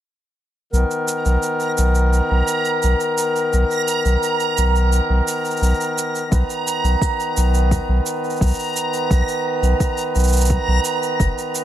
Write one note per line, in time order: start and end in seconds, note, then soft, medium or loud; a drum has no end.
0.73 0.84 B1 medium
0.73 11.64 D#3 medium
0.73 11.64 B3 medium
0.73 6.27 A#4 medium
0.73 11.64 A#5 medium
0.73 shaker soft
0.91 shaker soft
1.08 shaker medium
1.25 1.37 B1 medium
1.25 shaker soft
1.43 shaker soft
1.60 shaker soft
1.77 2.21 B1 medium
1.77 shaker medium
1.95 shaker soft
2.13 shaker soft
2.31 2.42 B1 medium
2.47 shaker medium
2.65 shaker soft
2.82 2.94 B1 medium
2.82 shaker soft
3.00 shaker soft
3.18 shaker medium
3.36 shaker soft
3.53 3.64 B1 medium
3.53 shaker soft
3.71 shaker soft
3.88 shaker medium
4.05 4.16 B1 medium
4.05 shaker soft
4.23 shaker soft
4.40 shaker soft
4.58 5.00 B1 medium
4.58 shaker medium
4.76 shaker soft
4.92 shaker soft
5.09 5.21 B1 medium
5.28 shaker medium
5.45 shaker soft
5.51 shaker soft
5.57 shaker soft
5.62 5.73 B1 medium
5.62 shaker soft
5.74 shaker soft
5.81 shaker soft
5.98 shaker medium
6.15 shaker soft
6.31 6.43 B1 medium
6.31 11.64 B4 medium
6.31 kick loud
6.31 shaker soft
6.50 shaker soft
6.67 shaker medium
6.84 6.95 B1 medium
6.84 shaker soft
7.02 kick medium
7.02 shaker soft
7.20 shaker soft
7.37 7.79 B1 medium
7.37 shaker medium
7.54 shaker soft
7.71 kick medium
7.71 shaker soft
7.88 8.00 B1 medium
8.06 shaker medium
8.24 shaker soft
8.30 shaker soft
8.36 shaker soft
8.41 8.52 B1 medium
8.41 kick medium
8.41 shaker soft
8.46 shaker soft
8.48 shaker soft
8.50 shaker soft
8.53 shaker soft
8.55 shaker soft
8.59 shaker soft
8.64 shaker soft
8.68 shaker soft
8.73 shaker soft
8.76 shaker medium
8.93 shaker soft
9.11 9.22 B1 medium
9.11 kick medium
9.11 shaker soft
9.28 shaker soft
9.62 9.74 B1 medium
9.62 shaker soft
9.80 kick medium
9.80 shaker soft
9.97 shaker soft
10.15 10.58 B1 medium
10.15 shaker soft
10.19 shaker soft
10.24 shaker soft
10.28 shaker soft
10.33 shaker medium
10.37 shaker medium
10.41 shaker medium
10.45 shaker medium
10.50 kick medium
10.50 shaker soft
10.68 10.79 B1 medium
10.84 shaker medium
11.03 shaker soft
11.20 11.31 F#1 medium
11.20 kick loud
11.20 shaker soft
11.38 shaker soft
11.55 shaker medium